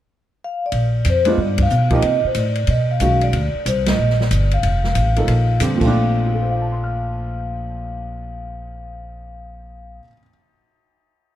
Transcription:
0.44 0.64 F5 medium
0.66 1.09 D5 medium
0.72 1.04 A#1 medium
0.72 kick soft
0.72 ride medium
1.05 1.37 F2 medium
1.05 kick soft
1.05 hi-hat pedal soft
1.05 ride medium
1.10 1.29 C5 medium
1.25 1.36 G#3 medium
1.25 1.37 B3 medium
1.25 1.37 D4 medium
1.25 1.38 F4 medium
1.25 ride medium
1.30 1.39 D#5 medium
1.37 1.69 G2 medium
1.37 kick soft
1.42 1.61 D5 medium
1.58 kick medium
1.58 ride medium
1.63 1.94 F5 medium
1.70 2.02 B2 medium
1.70 hi-hat pedal soft
1.90 2.02 F3 medium
1.90 2.02 A#3 medium
1.90 2.02 D#4 medium
1.90 2.03 G4 medium
1.90 kick medium
1.90 ride soft
1.95 2.24 D#5 medium
2.02 2.22 C3 medium
2.02 kick soft
2.02 ride medium
2.24 2.37 C5 medium
2.24 muted upright bass stroke soft
2.35 2.67 A2 medium
2.35 kick soft
2.35 hi-hat pedal soft
2.35 ride medium
2.39 2.71 D5 medium
2.55 ride soft
2.67 3.00 B2 medium
2.67 2.91 D#5 medium
2.67 kick soft
2.67 ride medium
2.91 3.01 F5 medium
3.00 3.32 B1 medium
3.00 3.33 D#3 medium
3.00 3.34 G#3 soft
3.00 3.34 C#4 soft
3.00 3.34 F#4 medium
3.00 3.23 F5 medium
3.00 kick soft
3.00 hi-hat pedal medium
3.00 ride medium
3.21 3.68 D5 medium
3.21 ride soft
3.33 3.53 D2 medium
3.33 kick soft
3.33 ride medium
3.55 muted upright bass stroke soft
3.66 3.97 C2 medium
3.66 3.77 C5 medium
3.66 kick soft
3.66 hi-hat pedal medium
3.66 ride medium
3.86 snare medium
3.86 ride medium
3.99 4.30 A#1 medium
4.10 snare soft
4.20 4.53 D5 medium
4.20 snare soft
4.31 4.62 G1 medium
4.31 kick soft
4.31 hi-hat pedal medium
4.31 ride medium
4.51 5.58 F5 medium
4.51 ride soft
4.63 4.95 F1 medium
4.63 kick soft
4.63 ride medium
4.84 snare soft
4.95 5.27 A1 medium
4.95 kick soft
4.95 hi-hat pedal soft
4.95 ride medium
5.16 5.59 F3 medium
5.16 5.59 A#3 medium
5.16 5.59 D#4 medium
5.16 5.59 A4 medium
5.16 ride soft
5.28 5.60 A#1 medium
5.28 kick soft
5.28 ride medium
5.60 5.80 F2 medium
5.60 5.79 D3 medium
5.60 5.80 G3 soft
5.60 5.80 C4 medium
5.60 5.80 G4 medium
5.60 kick soft
5.60 hi-hat pedal medium
5.60 ride medium
5.75 10.00 A#2 medium
5.75 10.01 F3 medium
5.81 9.98 A#1 medium
5.81 10.03 A3 medium
5.81 10.04 C4 medium
5.81 9.99 F5 medium
5.81 kick medium
5.81 crash medium
5.87 10.06 D4 medium
6.26 9.99 F4 soft
6.34 10.03 A4 soft
6.42 10.07 C5 soft
6.51 10.11 F5 soft
6.61 10.17 A5 soft
6.72 10.22 C6 soft
6.84 10.28 F6 soft

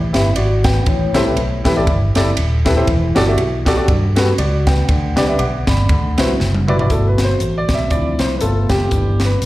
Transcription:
0.00 0.10 A1 medium
0.13 0.33 G1 medium
0.13 0.26 E4 medium
0.13 0.26 G4 medium
0.13 0.26 B4 medium
0.13 0.27 E5 medium
0.13 snare loud
0.13 ride bell medium
0.36 0.79 G#1 medium
0.36 0.63 F#4 medium
0.36 0.63 D5 medium
0.36 ride bell medium
0.64 1.13 B4 medium
0.64 1.12 G5 medium
0.64 kick medium
0.64 snare loud
0.64 ride bell medium
0.86 1.11 A1 loud
0.86 1.61 A2 medium
0.86 kick loud
0.86 ride bell medium
1.14 1.33 C2 medium
1.14 1.21 E4 medium
1.14 1.21 G4 medium
1.14 1.21 A4 medium
1.14 1.21 C5 loud
1.14 snare loud
1.14 ride bell medium
1.25 1.38 E4 medium
1.25 1.39 G4 medium
1.25 1.39 A4 medium
1.25 1.39 B4 medium
1.36 1.61 B1 loud
1.36 ride bell medium
1.64 1.89 A1 loud
1.64 1.71 E4 medium
1.64 1.71 G4 medium
1.64 1.72 A4 medium
1.64 1.72 B4 loud
1.64 kick medium
1.64 snare loud
1.64 ride bell medium
1.75 1.88 E4 medium
1.75 1.89 G4 medium
1.75 1.89 A4 medium
1.75 1.89 D5 medium
1.87 2.11 G1 medium
1.87 kick loud
1.87 ride bell medium
2.15 2.34 F#1 medium
2.15 2.28 E4 medium
2.15 2.28 G4 medium
2.15 2.28 A4 medium
2.15 2.28 D5 medium
2.15 snare loud
2.15 ride bell medium
2.37 2.80 D#1 loud
2.37 ride bell medium
2.65 2.71 E4 medium
2.65 2.72 G4 medium
2.65 2.72 A4 medium
2.65 2.72 B4 medium
2.65 kick loud
2.65 snare loud
2.65 ride bell medium
2.76 2.87 E4 medium
2.76 2.88 G4 medium
2.76 2.88 A4 medium
2.76 2.88 C5 medium
2.87 3.12 E1 loud
2.87 3.62 E3 medium
2.87 kick loud
2.87 ride bell medium
3.15 3.35 G1 medium
3.15 3.22 F#4 medium
3.15 3.22 G4 medium
3.15 3.22 A4 medium
3.15 3.23 D5 loud
3.15 snare loud
3.15 ride bell medium
3.27 3.39 F#4 medium
3.27 3.40 G4 medium
3.27 3.40 A4 medium
3.27 3.40 E5 medium
3.38 3.81 B1 medium
3.38 ride bell medium
3.65 3.72 F#4 medium
3.65 3.72 G4 medium
3.65 3.73 A4 medium
3.65 3.73 D5 loud
3.65 kick medium
3.65 snare loud
3.65 ride bell medium
3.76 3.89 F#4 medium
3.76 3.90 G4 medium
3.76 3.90 A4 medium
3.76 3.90 D5 medium
3.88 4.31 G2 medium
3.88 kick loud
3.88 ride bell medium
4.16 4.28 F#4 medium
4.16 4.29 G4 medium
4.16 4.29 A4 medium
4.16 4.29 B4 medium
4.16 snare loud
4.16 ride bell medium
4.38 4.81 C#2 medium
4.38 4.66 F#4 medium
4.38 4.65 D5 medium
4.38 ride bell medium
4.67 5.15 B4 medium
4.67 5.15 G5 medium
4.67 kick loud
4.67 snare loud
4.67 ride bell medium
4.89 5.13 D2 loud
4.89 5.64 D3 medium
4.89 kick loud
4.89 ride bell medium
5.16 5.36 C2 medium
5.16 5.23 D4 medium
5.16 5.23 G4 medium
5.16 5.23 B4 medium
5.16 5.24 D5 medium
5.16 snare loud
5.16 ride bell medium
5.27 5.40 D4 medium
5.27 5.41 G4 medium
5.27 5.41 B4 medium
5.27 5.39 E5 medium
5.39 5.63 B1 loud
5.39 5.66 F#5 medium
5.39 5.66 D6 medium
5.39 ride bell medium
5.67 5.86 G1 medium
5.67 6.16 D5 medium
5.67 6.16 B5 medium
5.67 kick medium
5.67 snare loud
5.67 ride bell medium
5.89 6.14 D2 medium
5.89 6.64 D3 medium
5.89 kick loud
5.89 ride bell medium
6.17 6.36 C2 medium
6.17 6.30 E4 medium
6.17 6.30 F#4 medium
6.17 6.30 B4 medium
6.17 6.31 C5 medium
6.17 snare loud
6.17 ride bell medium
6.40 6.83 F#1 medium
6.40 snare medium
6.54 high tom medium
6.68 6.74 E4 medium
6.68 6.74 F#4 medium
6.68 6.75 B4 medium
6.68 6.75 D5 medium
6.68 mid tom medium
6.79 6.90 E4 medium
6.79 6.90 F#4 medium
6.79 6.91 B4 medium
6.79 6.91 D5 medium
6.79 floor tom medium
6.90 7.33 G1 loud
6.90 7.87 B2 soft
6.90 7.87 A3 soft
6.90 7.88 F#4 medium
6.90 7.06 A4 medium
6.90 kick medium
6.90 closed hi-hat medium
7.08 7.25 B4 medium
7.18 snare loud
7.18 closed hi-hat medium
7.24 7.59 C5 medium
7.40 7.65 A1 medium
7.40 closed hi-hat medium
7.58 7.73 D5 medium
7.69 7.88 B1 medium
7.69 kick medium
7.69 snare loud
7.69 closed hi-hat medium
7.74 7.90 E5 medium
7.91 8.15 D2 medium
7.91 8.39 F3 medium
7.91 8.39 C4 soft
7.91 8.39 E4 medium
7.91 8.17 D5 medium
7.91 kick loud
7.91 closed hi-hat medium
8.19 8.38 C2 medium
8.19 8.36 C5 medium
8.19 snare loud
8.19 closed hi-hat medium
8.37 8.42 B4 medium
8.37 closed hi-hat medium
8.41 8.66 G1 medium
8.41 8.89 A3 soft
8.41 8.90 B3 soft
8.41 8.90 F4 medium
8.41 8.71 A4 medium
8.69 8.88 F#1 medium
8.69 9.21 G4 loud
8.69 kick medium
8.69 snare loud
8.69 closed hi-hat medium
8.91 9.35 G1 medium
8.91 9.27 E3 soft
8.91 9.27 B3 soft
8.91 9.28 D4 medium
8.91 kick medium
8.91 closed hi-hat medium
9.20 snare loud
9.20 closed hi-hat medium
9.25 9.46 B4 medium
9.42 9.46 B1 medium
9.42 closed hi-hat medium

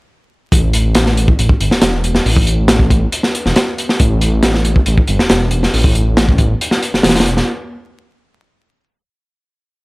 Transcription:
0.52 1.33 A1 loud
0.52 kick loud
0.52 closed hi-hat medium
0.73 closed hi-hat medium
0.95 snare loud
0.95 closed hi-hat medium
1.06 snare soft
1.17 closed hi-hat medium
1.28 kick loud
1.39 1.53 A1 loud
1.39 closed hi-hat medium
1.49 kick loud
1.60 1.71 G1 medium
1.60 closed hi-hat medium
1.71 1.80 E1 soft
1.71 snare medium
1.82 2.19 E1 medium
1.82 snare loud
1.82 closed hi-hat loud
2.04 closed hi-hat medium
2.15 snare medium
2.25 3.06 A1 loud
2.25 open hi-hat medium
2.36 kick medium
2.47 closed hi-hat medium
2.68 snare loud
2.68 closed hi-hat loud
2.79 kick medium
2.90 kick loud
2.90 closed hi-hat medium
3.12 closed hi-hat medium
3.23 snare soft
3.35 closed hi-hat medium
3.45 3.52 E1 loud
3.45 snare soft
3.56 snare loud
3.56 closed hi-hat medium
3.78 closed hi-hat medium
3.89 snare soft
4.00 4.81 A1 loud
4.00 kick loud
4.00 closed hi-hat medium
4.21 closed hi-hat medium
4.43 snare loud
4.43 closed hi-hat medium
4.54 snare medium
4.65 closed hi-hat medium
4.76 kick loud
4.86 5.01 A1 loud
4.86 closed hi-hat medium
4.98 kick medium
5.07 5.19 G1 loud
5.07 closed hi-hat medium
5.19 5.28 E1 soft
5.19 snare medium
5.30 5.67 E1 medium
5.30 snare loud
5.30 closed hi-hat medium
5.51 closed hi-hat medium
5.63 snare soft
5.74 6.54 A1 loud
5.74 open hi-hat medium
5.84 kick loud
5.95 closed hi-hat medium
6.17 snare loud
6.17 closed hi-hat medium
6.29 kick loud
6.38 kick medium
6.38 closed hi-hat medium
6.61 closed hi-hat medium
6.71 snare medium
6.83 closed hi-hat medium
6.93 7.02 E1 soft
6.93 snare soft
7.03 7.41 E1 medium
7.03 snare medium
7.03 closed hi-hat medium
7.09 snare loud
7.09 closed hi-hat medium
7.16 snare medium
7.16 closed hi-hat medium
7.20 snare medium
7.20 closed hi-hat medium
7.26 closed hi-hat medium
7.37 snare medium

